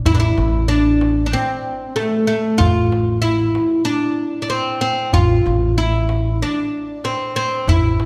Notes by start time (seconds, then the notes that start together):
0.05 A1 E4, tombak dum
0.15 D4
0.20 E4
0.37 A1, tombak tek
0.68 D4
1.01 tombak tek
1.26 D4
1.33 C4
1.96 A3, tombak tek
2.27 A3, tombak ka
2.58 A1 F4, tombak dum
2.92 tombak tek
3.22 E4
3.55 tombak tek
3.85 D4, tombak ka
4.42 D4
4.49 C4, tombak tek
4.81 C4, tombak ka
5.13 A1 F4, tombak dum
5.46 A1, tombak tek
5.78 E4
6.09 tombak tek
6.41 D4, tombak ka
7.04 C4, tombak tek
7.36 C4, tombak ka
7.67 A1 E4, tombak dum
8.00 tombak tek